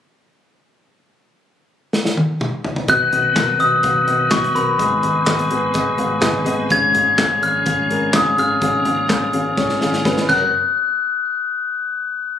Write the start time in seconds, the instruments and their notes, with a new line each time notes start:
1.93 snare
2.05 snare
2.17 high tom
2.41 mid tom
2.65 floor tom
2.76 floor tom
2.88 fingered electric bass B1, upright piano B2 B3 F#4 D#5, tonewheel organ D#3 F#3 B3, glockenspiel F#6, kick, closed hi-hat
3.12 fingered electric bass B1, upright piano B3 F#4 D#5, closed hi-hat, floor tom
3.35 fingered electric bass B1, upright piano B3 F#4 A#4, kick, snare, clap, closed hi-hat
3.59 fingered electric bass B1, upright piano B3 F#4 D#5, glockenspiel D#6, closed hi-hat
3.83 fingered electric bass B1, upright piano B3 F#4 F5, kick, closed hi-hat
4.07 fingered electric bass B1, upright piano B3 F#4 D#5, closed hi-hat
4.31 fingered electric bass B1, upright piano B3 F#4 D#5, glockenspiel C#6, kick, snare, clap, closed hi-hat
4.44 closed hi-hat, floor tom
4.54 fingered electric bass B1, upright piano B3 F#4 A#4, glockenspiel B5, closed hi-hat
4.79 fingered electric bass G#1, upright piano G#2 B3 G#4 D#5, tonewheel organ G#3 B3, kick, closed hi-hat
5.03 fingered electric bass G#1, upright piano B3 G#4 D#5, closed hi-hat, floor tom
5.27 fingered electric bass G#1, upright piano B3 G#4 D#5, kick, snare, clap, closed hi-hat
5.39 closed hi-hat
5.51 fingered electric bass G#1, upright piano B3 G#4 B4, closed hi-hat
5.74 fingered electric bass G#1, upright piano B3 G#4 D#5, kick, closed hi-hat
5.98 fingered electric bass G#1, upright piano B3 G#4 F5, closed hi-hat, floor tom
6.21 fingered electric bass G#1, upright piano B3 G#4 D#5, kick, snare, clap, closed hi-hat
6.34 floor tom
6.45 fingered electric bass G#1, upright piano B3 G#4 D#5, closed hi-hat
6.70 fingered electric bass G#1, upright piano G#2 C#4 G#4 F5, tonewheel organ F3 C#4, glockenspiel G#6, kick, closed hi-hat
6.94 fingered electric bass G#1, upright piano C#4 G#4 F5, closed hi-hat, floor tom
7.17 fingered electric bass G#1, upright piano C#4 G#4 F5, kick, snare, clap, closed hi-hat
7.42 fingered electric bass G#1, upright piano C#4 G#4 F5, glockenspiel F6, closed hi-hat
7.66 fingered electric bass G#1, upright piano C#4 G#4 F5, kick, closed hi-hat
7.90 fingered electric bass G#1, upright piano C#4 G#4 A#4, closed hi-hat
8.14 fingered electric bass G#1, upright piano C#4 G#4 F5, glockenspiel D#6, kick, snare, clap, closed hi-hat
8.26 floor tom
8.38 fingered electric bass G#1, upright piano C#4 G#4 F5, glockenspiel F6, closed hi-hat
8.62 fingered electric bass G#1, upright piano G#2 C#4 G#4 F5, tonewheel organ A#3, kick, closed hi-hat
8.85 fingered electric bass G#1, upright piano C#4 G#4 F5, closed hi-hat, floor tom
9.09 fingered electric bass G#1, upright piano C#4 G#4 F5, kick, snare, clap, closed hi-hat
9.33 fingered electric bass G#1, upright piano C#4 G#4 F5, closed hi-hat
9.57 fingered electric bass G#1, upright piano C#4 G#4 C#5, kick, snare
9.69 snare
9.81 fingered electric bass G#1, upright piano C#4 G#4 F5, snare
9.93 snare
10.05 fingered electric bass G#1, upright piano C#4 G#4 B4, kick, snare
10.17 snare
10.29 fingered electric bass F#1, upright piano F#2 C#4 A#4 F#5, tonewheel organ F#3 F#4 A#4 C#5, glockenspiel F#6, kick, crash